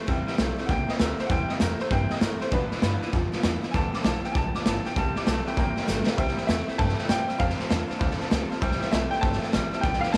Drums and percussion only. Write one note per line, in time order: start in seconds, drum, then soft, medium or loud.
0.08 kick loud
0.08 snare soft
0.27 snare soft
0.38 snare loud
0.38 hi-hat pedal loud
0.58 snare soft
0.69 kick loud
0.69 snare soft
0.88 snare soft
1.00 snare loud
1.00 hi-hat pedal medium
1.19 snare soft
1.30 kick loud
1.30 snare soft
1.49 snare soft
1.60 snare loud
1.60 hi-hat pedal loud
1.79 snare soft
1.91 kick loud
1.91 snare soft
2.10 snare soft
2.21 snare loud
2.21 hi-hat pedal medium
2.41 snare soft
2.52 kick loud
2.52 snare soft
2.71 snare soft
2.82 snare loud
2.82 hi-hat pedal medium
3.02 snare soft
3.13 kick loud
3.13 snare soft
3.32 snare soft
3.43 snare loud
3.43 hi-hat pedal medium
3.63 snare soft
3.74 kick loud
3.74 snare soft
3.93 snare soft
4.04 snare loud
4.04 hi-hat pedal medium
4.24 snare soft
4.35 kick loud
4.35 snare soft
4.55 snare soft
4.66 snare loud
4.66 hi-hat pedal medium
4.85 snare soft
4.96 kick loud
4.96 snare soft
5.16 snare soft
5.27 snare loud
5.27 hi-hat pedal medium
5.46 snare soft
5.57 kick loud
5.57 snare soft
5.76 snare soft
5.88 snare medium
5.88 hi-hat pedal loud
6.07 snare loud
6.18 kick loud
6.18 snare soft
6.28 snare soft
6.37 snare soft
6.49 snare loud
6.49 hi-hat pedal medium
6.68 snare soft
6.79 kick loud
6.79 snare soft
6.89 snare soft
6.98 snare soft
7.09 snare loud
7.09 hi-hat pedal medium
7.29 snare soft
7.40 kick loud
7.40 snare soft
7.50 snare soft
7.60 snare soft
7.71 snare loud
7.71 hi-hat pedal medium
7.90 snare soft
8.01 kick loud
8.01 snare soft
8.11 snare soft
8.20 snare soft
8.31 snare loud
8.31 hi-hat pedal medium
8.51 snare soft
8.62 kick loud
8.62 snare soft
8.72 snare soft
8.82 snare soft
8.93 snare loud
8.93 hi-hat pedal medium
9.12 snare soft
9.23 kick loud
9.23 snare soft
9.33 snare soft
9.42 snare soft
9.53 snare loud
9.53 hi-hat pedal medium
9.73 snare soft
9.83 kick loud
9.83 snare soft
9.93 snare soft
10.03 snare soft
10.14 snare loud
10.14 hi-hat pedal loud